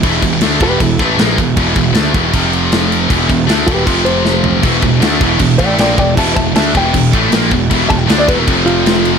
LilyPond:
<<
  \new Staff \with { instrumentName = "Hollow-body jazz guitar" } { \time 4/4 \key e \phrygian \tempo 4 = 156 e'8 r4 <g' b'>8 <e' a'>8 b'4.~ | b'4. r2 r8 | r4. <g' b'>8 <f' a'>8 c''4. | r2 r8 <d'' g''>8 <d'' g''>8 <d'' g''>8 |
<e'' a''>8 <e'' a''>8 <e'' a''>8 g''2 r8 | r8 a''16 g''16 e''16 d''16 b'16 ais'16 a'8 f'4. | }
  \new Staff \with { instrumentName = "Distorted electric guitar" } { \clef bass \time 4/4 \key e \phrygian <e, b, e>8 <e, b,>8 <d a d'>8 <e, b, e>8 <e, b,>8 <a, e a>8 <ais, f ais>8 <e, b,>8 | <e, b, e>8 <e, b,>8 <d a d'>8 <e, b, e>8 <f, c f>2 | <e, b, e>8 <e, b,>8 <d a d'>8 <e, b, e>8 <f, c f>2 | <e, b, e>8 <e, b,>8 <d a d'>8 <e, b, e>8 <e, b,>8 <a, e a>8 <ais, f ais>8 <e, b,>8 |
<e, b, e>8 <e, b,>8 <d a d'>8 <e, b, e>8 <e, b,>8 <a, e a>8 <ais, f ais>8 <e, b,>8 | <e, b, e>8 <e, b,>8 <d a d'>8 <e, b, e>8 <f, c f>2 | }
  \new Staff \with { instrumentName = "Distorted electric guitar" } { \clef bass \time 4/4 \key e \phrygian <e, b, e>8 <e, b,>8 <d a d'>8 <e, b, e>8 <e, b,>8 <a, e a>8 <ais, f ais>8 <e, b,>8 | <e, b, e>8 <e, b,>8 <d a d'>8 <e, b, e>8 <f, c f>2 | <e, b, e>8 <e, b,>8 <d a d'>8 <e, b, e>8 <f, c f>2 | <e, b, e>8 <e, b,>8 <d a d'>8 <e, b, e>8 <e, b,>8 <a, e a>8 <ais, f ais>8 <e, b,>8 |
<e, b, e>8 <e, b,>8 <d a d'>8 <e, b, e>8 <e, b,>8 <a, e a>8 <ais, f ais>8 <e, b,>8 | <e, b, e>8 <e, b,>8 <d a d'>8 <e, b, e>8 <f, c f>2 | }
  \new Staff \with { instrumentName = "Distorted electric guitar" } { \clef bass \time 4/4 \key e \phrygian r1 | r1 | r1 | <e, b, e>8 <e, b,>8 <d a d'>8 <e, b, e>8 <e, b,>8 <a, e a>8 <ais, f ais>8 <e, b,>8 |
<e, b, e>8 <e, b,>8 <d a d'>8 <e, b, e>8 <e, b,>8 <a, e a>8 <ais, f ais>8 <e, b,>8 | <e, b, e>8 <e, b,>8 <d a d'>8 <e, b, e>8 <f, c f>2 | }
  \new Staff \with { instrumentName = "Picked electric bass" } { \clef bass \time 4/4 \key e \phrygian e,,8 e,,8 d,8 e,,8 e,,8 a,,8 ais,,8 e,,8 | e,,8 e,,8 d,8 e,,8 f,,2 | e,,8 e,,8 d,8 e,,8 f,,2 | e,,8 e,,8 d,8 e,,8 e,,8 a,,8 ais,,8 e,,8 |
e,,8 e,,8 d,8 e,,8 e,,8 a,,8 ais,,8 e,,8 | e,,8 e,,8 d,8 e,,8 f,,2 | }
  \new DrumStaff \with { instrumentName = "Drums" } \drummode { \time 4/4 <cymc bd>8 <cymc bd>8 <cymc sn>8 <cymc bd>8 <cymc bd>8 <cymc bd>8 <cymc sn>8 <cymc bd>8 | <cymc bd>8 <cymc bd>8 <cymc sn>8 <cymc bd>8 <cymc bd>8 cymc8 <cymc sn>8 cymc8 | <cymc bd>8 <cymc bd>8 <cymc sn>8 <cymc bd>8 <cymc bd>8 cymc8 sn8 tomfh8 | <cymc bd>8 <cymc bd>8 <cymc sn>8 <cymc bd>8 <cymc bd>8 <cymc bd>8 <cymc sn>8 <cymc bd>8 |
<cymc bd>8 <cymc bd>8 <cymc sn>8 <cymc bd>8 <cymc bd>8 <cymc bd>8 <cymc sn>8 <cymc bd>8 | <cymc bd>8 <cymc bd>8 <cymc sn>8 <cymc bd>8 <cymc bd>8 cymc8 <cymc sn>8 cymc8 | }
>>